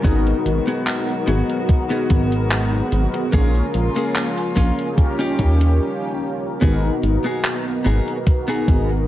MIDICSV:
0, 0, Header, 1, 7, 480
1, 0, Start_track
1, 0, Tempo, 821918
1, 29, Time_signature, 4, 2, 24, 8
1, 5300, End_track
2, 0, Start_track
2, 0, Title_t, "Clean electric guitar"
2, 0, Program_c, 0, 27
2, 20, Note_on_c, 0, 59, 110
2, 26, Note_on_c, 0, 66, 100
2, 31, Note_on_c, 0, 68, 120
2, 209, Note_off_c, 0, 59, 0
2, 212, Note_off_c, 0, 66, 0
2, 214, Note_off_c, 0, 68, 0
2, 392, Note_on_c, 0, 59, 85
2, 397, Note_on_c, 0, 66, 77
2, 402, Note_on_c, 0, 68, 94
2, 571, Note_off_c, 0, 59, 0
2, 573, Note_off_c, 0, 66, 0
2, 576, Note_off_c, 0, 68, 0
2, 743, Note_on_c, 0, 59, 84
2, 748, Note_on_c, 0, 66, 78
2, 752, Note_on_c, 0, 68, 92
2, 930, Note_off_c, 0, 59, 0
2, 933, Note_off_c, 0, 66, 0
2, 935, Note_off_c, 0, 68, 0
2, 1110, Note_on_c, 0, 59, 114
2, 1114, Note_on_c, 0, 66, 102
2, 1119, Note_on_c, 0, 68, 124
2, 1354, Note_off_c, 0, 59, 0
2, 1356, Note_off_c, 0, 66, 0
2, 1358, Note_off_c, 0, 68, 0
2, 1941, Note_on_c, 0, 58, 106
2, 1947, Note_on_c, 0, 61, 98
2, 1951, Note_on_c, 0, 68, 119
2, 2129, Note_off_c, 0, 58, 0
2, 2132, Note_off_c, 0, 61, 0
2, 2134, Note_off_c, 0, 68, 0
2, 2312, Note_on_c, 0, 58, 83
2, 2318, Note_on_c, 0, 61, 80
2, 2321, Note_on_c, 0, 68, 94
2, 2491, Note_off_c, 0, 58, 0
2, 2494, Note_off_c, 0, 61, 0
2, 2495, Note_off_c, 0, 68, 0
2, 2662, Note_on_c, 0, 58, 84
2, 2665, Note_on_c, 0, 61, 80
2, 2670, Note_on_c, 0, 65, 94
2, 2850, Note_off_c, 0, 58, 0
2, 2852, Note_off_c, 0, 61, 0
2, 2854, Note_off_c, 0, 65, 0
2, 3031, Note_on_c, 0, 61, 115
2, 3035, Note_on_c, 0, 63, 106
2, 3039, Note_on_c, 0, 67, 123
2, 3274, Note_off_c, 0, 61, 0
2, 3276, Note_off_c, 0, 63, 0
2, 3279, Note_off_c, 0, 67, 0
2, 3861, Note_on_c, 0, 59, 109
2, 3866, Note_on_c, 0, 66, 101
2, 3872, Note_on_c, 0, 68, 116
2, 4050, Note_off_c, 0, 59, 0
2, 4052, Note_off_c, 0, 66, 0
2, 4055, Note_off_c, 0, 68, 0
2, 4230, Note_on_c, 0, 59, 85
2, 4236, Note_on_c, 0, 66, 75
2, 4241, Note_on_c, 0, 68, 92
2, 4410, Note_off_c, 0, 59, 0
2, 4412, Note_off_c, 0, 66, 0
2, 4415, Note_off_c, 0, 68, 0
2, 4581, Note_on_c, 0, 59, 82
2, 4586, Note_on_c, 0, 66, 77
2, 4591, Note_on_c, 0, 68, 90
2, 4769, Note_off_c, 0, 59, 0
2, 4772, Note_off_c, 0, 66, 0
2, 4775, Note_off_c, 0, 68, 0
2, 4951, Note_on_c, 0, 59, 111
2, 4956, Note_on_c, 0, 66, 106
2, 4960, Note_on_c, 0, 68, 125
2, 5194, Note_off_c, 0, 59, 0
2, 5197, Note_off_c, 0, 66, 0
2, 5199, Note_off_c, 0, 68, 0
2, 5300, End_track
3, 0, Start_track
3, 0, Title_t, "Analog polysynth"
3, 0, Program_c, 1, 90
3, 0, Control_c, 1, 64, 127
3, 22, Note_on_c, 1, 59, 91
3, 29, Note_on_c, 1, 63, 85
3, 34, Note_on_c, 1, 66, 82
3, 37, Control_c, 1, 64, 0
3, 40, Note_on_c, 1, 70, 102
3, 122, Control_c, 1, 64, 127
3, 1901, Note_off_c, 1, 59, 0
3, 1904, Note_off_c, 1, 63, 0
3, 1907, Note_off_c, 1, 66, 0
3, 1910, Note_off_c, 1, 70, 0
3, 1941, Note_on_c, 1, 61, 80
3, 1946, Note_on_c, 1, 65, 74
3, 1952, Note_on_c, 1, 68, 74
3, 1957, Control_c, 1, 64, 0
3, 1959, Note_on_c, 1, 70, 89
3, 2063, Control_c, 1, 64, 127
3, 2860, Note_off_c, 1, 61, 0
3, 2863, Note_off_c, 1, 65, 0
3, 2866, Note_off_c, 1, 68, 0
3, 2870, Note_off_c, 1, 70, 0
3, 2898, Note_on_c, 1, 61, 80
3, 2905, Note_on_c, 1, 65, 72
3, 2911, Note_on_c, 1, 67, 72
3, 2916, Control_c, 1, 64, 0
3, 2916, Note_on_c, 1, 70, 86
3, 3012, Control_c, 1, 64, 127
3, 3384, Note_off_c, 1, 61, 0
3, 3387, Note_off_c, 1, 65, 0
3, 3390, Note_off_c, 1, 67, 0
3, 3393, Note_off_c, 1, 70, 0
3, 3859, Note_on_c, 1, 59, 92
3, 3865, Note_on_c, 1, 63, 83
3, 3871, Note_on_c, 1, 66, 81
3, 3876, Note_on_c, 1, 70, 98
3, 3877, Control_c, 1, 64, 0
3, 3961, Control_c, 1, 64, 127
3, 5300, Note_off_c, 1, 59, 0
3, 5300, Note_off_c, 1, 63, 0
3, 5300, Note_off_c, 1, 66, 0
3, 5300, Note_off_c, 1, 70, 0
3, 5300, End_track
4, 0, Start_track
4, 0, Title_t, "String section"
4, 0, Program_c, 2, 48
4, 0, Note_on_c, 2, 51, 81
4, 32, Note_on_c, 2, 56, 73
4, 33, Note_on_c, 2, 59, 72
4, 34, Note_on_c, 2, 54, 73
4, 35, Note_on_c, 2, 66, 85
4, 1928, Note_off_c, 2, 51, 0
4, 1932, Note_off_c, 2, 54, 0
4, 1932, Note_off_c, 2, 59, 0
4, 1933, Note_off_c, 2, 66, 0
4, 1949, Note_on_c, 2, 65, 85
4, 1950, Note_on_c, 2, 53, 70
4, 1950, Note_on_c, 2, 58, 72
4, 1951, Note_on_c, 2, 49, 81
4, 2887, Note_off_c, 2, 56, 0
4, 2900, Note_off_c, 2, 53, 0
4, 2900, Note_off_c, 2, 65, 0
4, 2901, Note_off_c, 2, 49, 0
4, 2906, Note_on_c, 2, 61, 73
4, 2908, Note_on_c, 2, 51, 78
4, 2908, Note_on_c, 2, 67, 85
4, 2909, Note_on_c, 2, 55, 73
4, 3851, Note_off_c, 2, 58, 0
4, 3858, Note_off_c, 2, 61, 0
4, 3859, Note_off_c, 2, 51, 0
4, 3859, Note_off_c, 2, 67, 0
4, 3860, Note_off_c, 2, 55, 0
4, 5300, End_track
5, 0, Start_track
5, 0, Title_t, "Analog synth bass"
5, 0, Program_c, 3, 38
5, 28, Note_on_c, 3, 32, 101
5, 195, Note_off_c, 3, 32, 0
5, 267, Note_on_c, 3, 32, 85
5, 354, Note_off_c, 3, 32, 0
5, 747, Note_on_c, 3, 32, 92
5, 834, Note_off_c, 3, 32, 0
5, 1228, Note_on_c, 3, 32, 77
5, 1650, Note_off_c, 3, 32, 0
5, 1707, Note_on_c, 3, 32, 96
5, 1794, Note_off_c, 3, 32, 0
5, 1948, Note_on_c, 3, 34, 100
5, 2115, Note_off_c, 3, 34, 0
5, 2189, Note_on_c, 3, 34, 84
5, 2275, Note_off_c, 3, 34, 0
5, 2667, Note_on_c, 3, 34, 94
5, 2754, Note_off_c, 3, 34, 0
5, 3149, Note_on_c, 3, 39, 92
5, 3389, Note_off_c, 3, 39, 0
5, 3869, Note_on_c, 3, 32, 99
5, 4035, Note_off_c, 3, 32, 0
5, 4108, Note_on_c, 3, 32, 86
5, 4195, Note_off_c, 3, 32, 0
5, 4591, Note_on_c, 3, 32, 91
5, 4676, Note_off_c, 3, 32, 0
5, 5069, Note_on_c, 3, 32, 78
5, 5300, Note_off_c, 3, 32, 0
5, 5300, End_track
6, 0, Start_track
6, 0, Title_t, "Muted clean electric guitar strokes"
6, 1593, Note_on_c, 9, 29, 32
6, 1651, Note_off_c, 9, 29, 0
6, 1832, Note_on_c, 9, 29, 33
6, 1890, Note_off_c, 9, 29, 0
6, 5300, End_track
7, 0, Start_track
7, 0, Title_t, "Drums"
7, 27, Note_on_c, 9, 36, 110
7, 28, Note_on_c, 9, 42, 77
7, 85, Note_off_c, 9, 36, 0
7, 87, Note_off_c, 9, 42, 0
7, 157, Note_on_c, 9, 42, 36
7, 215, Note_off_c, 9, 42, 0
7, 268, Note_on_c, 9, 42, 75
7, 327, Note_off_c, 9, 42, 0
7, 396, Note_on_c, 9, 42, 51
7, 455, Note_off_c, 9, 42, 0
7, 507, Note_on_c, 9, 39, 107
7, 507, Note_on_c, 9, 42, 73
7, 566, Note_off_c, 9, 39, 0
7, 566, Note_off_c, 9, 42, 0
7, 635, Note_on_c, 9, 42, 35
7, 694, Note_off_c, 9, 42, 0
7, 746, Note_on_c, 9, 42, 78
7, 804, Note_off_c, 9, 42, 0
7, 874, Note_on_c, 9, 42, 49
7, 932, Note_off_c, 9, 42, 0
7, 986, Note_on_c, 9, 42, 73
7, 988, Note_on_c, 9, 36, 109
7, 1044, Note_off_c, 9, 42, 0
7, 1046, Note_off_c, 9, 36, 0
7, 1115, Note_on_c, 9, 42, 34
7, 1173, Note_off_c, 9, 42, 0
7, 1226, Note_on_c, 9, 42, 74
7, 1228, Note_on_c, 9, 36, 97
7, 1284, Note_off_c, 9, 42, 0
7, 1286, Note_off_c, 9, 36, 0
7, 1355, Note_on_c, 9, 42, 50
7, 1413, Note_off_c, 9, 42, 0
7, 1467, Note_on_c, 9, 39, 111
7, 1467, Note_on_c, 9, 42, 75
7, 1525, Note_off_c, 9, 39, 0
7, 1525, Note_off_c, 9, 42, 0
7, 1705, Note_on_c, 9, 42, 76
7, 1764, Note_off_c, 9, 42, 0
7, 1834, Note_on_c, 9, 42, 51
7, 1893, Note_off_c, 9, 42, 0
7, 1946, Note_on_c, 9, 42, 81
7, 1948, Note_on_c, 9, 36, 111
7, 2004, Note_off_c, 9, 42, 0
7, 2006, Note_off_c, 9, 36, 0
7, 2075, Note_on_c, 9, 42, 36
7, 2133, Note_off_c, 9, 42, 0
7, 2185, Note_on_c, 9, 42, 78
7, 2244, Note_off_c, 9, 42, 0
7, 2315, Note_on_c, 9, 42, 52
7, 2373, Note_off_c, 9, 42, 0
7, 2426, Note_on_c, 9, 39, 109
7, 2426, Note_on_c, 9, 42, 75
7, 2485, Note_off_c, 9, 39, 0
7, 2485, Note_off_c, 9, 42, 0
7, 2556, Note_on_c, 9, 42, 37
7, 2614, Note_off_c, 9, 42, 0
7, 2667, Note_on_c, 9, 36, 55
7, 2668, Note_on_c, 9, 42, 79
7, 2726, Note_off_c, 9, 36, 0
7, 2727, Note_off_c, 9, 42, 0
7, 2797, Note_on_c, 9, 42, 50
7, 2855, Note_off_c, 9, 42, 0
7, 2908, Note_on_c, 9, 36, 109
7, 2908, Note_on_c, 9, 42, 78
7, 2966, Note_off_c, 9, 36, 0
7, 2967, Note_off_c, 9, 42, 0
7, 3037, Note_on_c, 9, 42, 36
7, 3095, Note_off_c, 9, 42, 0
7, 3147, Note_on_c, 9, 42, 78
7, 3148, Note_on_c, 9, 36, 59
7, 3206, Note_off_c, 9, 42, 0
7, 3207, Note_off_c, 9, 36, 0
7, 3277, Note_on_c, 9, 42, 53
7, 3336, Note_off_c, 9, 42, 0
7, 3869, Note_on_c, 9, 36, 118
7, 3869, Note_on_c, 9, 42, 82
7, 3927, Note_off_c, 9, 36, 0
7, 3928, Note_off_c, 9, 42, 0
7, 4109, Note_on_c, 9, 42, 67
7, 4167, Note_off_c, 9, 42, 0
7, 4349, Note_on_c, 9, 39, 114
7, 4349, Note_on_c, 9, 42, 79
7, 4407, Note_off_c, 9, 39, 0
7, 4407, Note_off_c, 9, 42, 0
7, 4589, Note_on_c, 9, 42, 67
7, 4647, Note_off_c, 9, 42, 0
7, 4718, Note_on_c, 9, 42, 37
7, 4776, Note_off_c, 9, 42, 0
7, 4828, Note_on_c, 9, 42, 79
7, 4829, Note_on_c, 9, 36, 116
7, 4886, Note_off_c, 9, 42, 0
7, 4887, Note_off_c, 9, 36, 0
7, 5069, Note_on_c, 9, 36, 104
7, 5070, Note_on_c, 9, 42, 67
7, 5127, Note_off_c, 9, 36, 0
7, 5128, Note_off_c, 9, 42, 0
7, 5300, End_track
0, 0, End_of_file